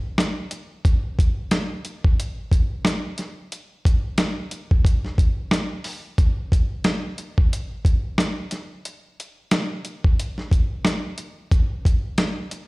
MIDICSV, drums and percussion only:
0, 0, Header, 1, 2, 480
1, 0, Start_track
1, 0, Tempo, 666667
1, 610, Time_signature, 4, 2, 24, 8
1, 9127, End_track
2, 0, Start_track
2, 0, Title_t, "Drums"
2, 130, Note_on_c, 9, 37, 91
2, 130, Note_on_c, 9, 38, 113
2, 146, Note_on_c, 9, 42, 88
2, 202, Note_off_c, 9, 37, 0
2, 202, Note_off_c, 9, 38, 0
2, 218, Note_off_c, 9, 42, 0
2, 367, Note_on_c, 9, 42, 77
2, 439, Note_off_c, 9, 42, 0
2, 611, Note_on_c, 9, 36, 112
2, 614, Note_on_c, 9, 42, 84
2, 683, Note_off_c, 9, 36, 0
2, 686, Note_off_c, 9, 42, 0
2, 854, Note_on_c, 9, 36, 93
2, 863, Note_on_c, 9, 42, 80
2, 926, Note_off_c, 9, 36, 0
2, 935, Note_off_c, 9, 42, 0
2, 1088, Note_on_c, 9, 42, 98
2, 1091, Note_on_c, 9, 37, 95
2, 1091, Note_on_c, 9, 38, 115
2, 1160, Note_off_c, 9, 42, 0
2, 1163, Note_off_c, 9, 37, 0
2, 1163, Note_off_c, 9, 38, 0
2, 1330, Note_on_c, 9, 42, 74
2, 1402, Note_off_c, 9, 42, 0
2, 1472, Note_on_c, 9, 36, 93
2, 1544, Note_off_c, 9, 36, 0
2, 1581, Note_on_c, 9, 42, 92
2, 1653, Note_off_c, 9, 42, 0
2, 1811, Note_on_c, 9, 36, 102
2, 1819, Note_on_c, 9, 42, 79
2, 1883, Note_off_c, 9, 36, 0
2, 1891, Note_off_c, 9, 42, 0
2, 2050, Note_on_c, 9, 37, 92
2, 2050, Note_on_c, 9, 38, 113
2, 2066, Note_on_c, 9, 42, 92
2, 2122, Note_off_c, 9, 37, 0
2, 2122, Note_off_c, 9, 38, 0
2, 2138, Note_off_c, 9, 42, 0
2, 2288, Note_on_c, 9, 42, 77
2, 2298, Note_on_c, 9, 38, 36
2, 2360, Note_off_c, 9, 42, 0
2, 2370, Note_off_c, 9, 38, 0
2, 2535, Note_on_c, 9, 42, 83
2, 2607, Note_off_c, 9, 42, 0
2, 2774, Note_on_c, 9, 36, 90
2, 2782, Note_on_c, 9, 42, 80
2, 2846, Note_off_c, 9, 36, 0
2, 2854, Note_off_c, 9, 42, 0
2, 3007, Note_on_c, 9, 42, 98
2, 3009, Note_on_c, 9, 38, 115
2, 3010, Note_on_c, 9, 37, 95
2, 3079, Note_off_c, 9, 42, 0
2, 3081, Note_off_c, 9, 38, 0
2, 3082, Note_off_c, 9, 37, 0
2, 3249, Note_on_c, 9, 42, 73
2, 3321, Note_off_c, 9, 42, 0
2, 3392, Note_on_c, 9, 36, 92
2, 3464, Note_off_c, 9, 36, 0
2, 3489, Note_on_c, 9, 36, 98
2, 3501, Note_on_c, 9, 42, 90
2, 3561, Note_off_c, 9, 36, 0
2, 3573, Note_off_c, 9, 42, 0
2, 3633, Note_on_c, 9, 38, 38
2, 3705, Note_off_c, 9, 38, 0
2, 3730, Note_on_c, 9, 36, 106
2, 3738, Note_on_c, 9, 42, 77
2, 3802, Note_off_c, 9, 36, 0
2, 3810, Note_off_c, 9, 42, 0
2, 3969, Note_on_c, 9, 37, 92
2, 3969, Note_on_c, 9, 38, 111
2, 3985, Note_on_c, 9, 42, 85
2, 4041, Note_off_c, 9, 37, 0
2, 4041, Note_off_c, 9, 38, 0
2, 4057, Note_off_c, 9, 42, 0
2, 4207, Note_on_c, 9, 46, 54
2, 4279, Note_off_c, 9, 46, 0
2, 4451, Note_on_c, 9, 36, 111
2, 4453, Note_on_c, 9, 42, 83
2, 4523, Note_off_c, 9, 36, 0
2, 4525, Note_off_c, 9, 42, 0
2, 4694, Note_on_c, 9, 36, 89
2, 4702, Note_on_c, 9, 42, 74
2, 4766, Note_off_c, 9, 36, 0
2, 4774, Note_off_c, 9, 42, 0
2, 4927, Note_on_c, 9, 42, 94
2, 4929, Note_on_c, 9, 38, 113
2, 4930, Note_on_c, 9, 37, 91
2, 4999, Note_off_c, 9, 42, 0
2, 5001, Note_off_c, 9, 38, 0
2, 5002, Note_off_c, 9, 37, 0
2, 5170, Note_on_c, 9, 42, 71
2, 5242, Note_off_c, 9, 42, 0
2, 5312, Note_on_c, 9, 36, 92
2, 5384, Note_off_c, 9, 36, 0
2, 5422, Note_on_c, 9, 42, 91
2, 5494, Note_off_c, 9, 42, 0
2, 5651, Note_on_c, 9, 36, 97
2, 5659, Note_on_c, 9, 42, 74
2, 5723, Note_off_c, 9, 36, 0
2, 5731, Note_off_c, 9, 42, 0
2, 5890, Note_on_c, 9, 37, 88
2, 5890, Note_on_c, 9, 38, 111
2, 5906, Note_on_c, 9, 42, 85
2, 5962, Note_off_c, 9, 37, 0
2, 5962, Note_off_c, 9, 38, 0
2, 5978, Note_off_c, 9, 42, 0
2, 6127, Note_on_c, 9, 42, 75
2, 6137, Note_on_c, 9, 38, 37
2, 6199, Note_off_c, 9, 42, 0
2, 6209, Note_off_c, 9, 38, 0
2, 6374, Note_on_c, 9, 42, 82
2, 6446, Note_off_c, 9, 42, 0
2, 6623, Note_on_c, 9, 42, 75
2, 6695, Note_off_c, 9, 42, 0
2, 6849, Note_on_c, 9, 42, 91
2, 6851, Note_on_c, 9, 37, 89
2, 6851, Note_on_c, 9, 38, 111
2, 6921, Note_off_c, 9, 42, 0
2, 6923, Note_off_c, 9, 37, 0
2, 6923, Note_off_c, 9, 38, 0
2, 7090, Note_on_c, 9, 42, 70
2, 7162, Note_off_c, 9, 42, 0
2, 7232, Note_on_c, 9, 36, 88
2, 7304, Note_off_c, 9, 36, 0
2, 7340, Note_on_c, 9, 42, 87
2, 7412, Note_off_c, 9, 42, 0
2, 7473, Note_on_c, 9, 38, 39
2, 7545, Note_off_c, 9, 38, 0
2, 7571, Note_on_c, 9, 36, 103
2, 7579, Note_on_c, 9, 42, 76
2, 7643, Note_off_c, 9, 36, 0
2, 7651, Note_off_c, 9, 42, 0
2, 7809, Note_on_c, 9, 38, 113
2, 7810, Note_on_c, 9, 37, 87
2, 7826, Note_on_c, 9, 42, 83
2, 7881, Note_off_c, 9, 38, 0
2, 7882, Note_off_c, 9, 37, 0
2, 7898, Note_off_c, 9, 42, 0
2, 8047, Note_on_c, 9, 42, 77
2, 8119, Note_off_c, 9, 42, 0
2, 8291, Note_on_c, 9, 36, 116
2, 8293, Note_on_c, 9, 42, 82
2, 8363, Note_off_c, 9, 36, 0
2, 8365, Note_off_c, 9, 42, 0
2, 8534, Note_on_c, 9, 36, 90
2, 8541, Note_on_c, 9, 42, 76
2, 8606, Note_off_c, 9, 36, 0
2, 8613, Note_off_c, 9, 42, 0
2, 8768, Note_on_c, 9, 42, 92
2, 8770, Note_on_c, 9, 37, 91
2, 8770, Note_on_c, 9, 38, 116
2, 8840, Note_off_c, 9, 42, 0
2, 8842, Note_off_c, 9, 37, 0
2, 8842, Note_off_c, 9, 38, 0
2, 9009, Note_on_c, 9, 42, 70
2, 9081, Note_off_c, 9, 42, 0
2, 9127, End_track
0, 0, End_of_file